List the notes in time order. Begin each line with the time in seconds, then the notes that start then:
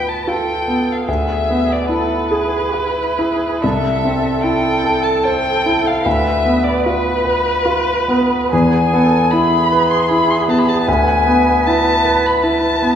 Already playing: D2 B3 F4 B4 G5
0.09 A5
0.27 F4 A4 G5
0.68 B3
0.92 F5
1.07 D2 G#4 E5
1.50 B3
1.72 D5
1.89 E4 A4 B4
2.31 G#4
2.72 E4 B4
3.19 E4 G#4
3.62 C2 A4 E5
4.04 C4
4.44 E4 G5
4.84 A4
5.04 A5
5.23 C5 G5
5.66 E4
5.87 F5
6.05 D2 B4 E5
6.46 B3
6.64 D5
6.84 F4 B4
7.25 B4
7.65 F4
8.08 B3
8.52 E2 G#4 G#5
8.93 B3 A4
9.31 E4 G#4 B5
9.72 B4
9.91 C6
10.09 E4 B5
10.30 C6
10.40 B5
10.48 B3 A5
10.59 B5
10.69 A5
10.81 A5
10.87 D2 B4 G#5
11.26 B3
11.66 E4 A5
12.05 B4
12.26 B5
12.43 E4 A5
12.82 B3